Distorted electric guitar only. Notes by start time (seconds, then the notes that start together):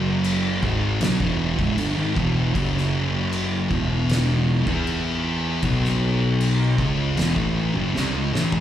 Already playing: F#2 C#3 F#3
0.62 G#2 D#3 G#3
1.01 B2 F#3
1.20 E2 B2 E3
1.58 C#2 G#2
1.77 G2 D3
1.95 G#2 D#3
2.15 E2 B2 E3
2.53 F#2 C#3 F#3
3.70 E2 B2 E3
4.67 E3 B3 E4
5.64 B2 F#3 B3
6.79 C#3 G#3 C#4
7.16 E2 B2
7.34 A2 E3 A3
7.74 F#2 C#3
7.94 C3 G3
8.13 C#3 G#3
8.32 A2 E3 A3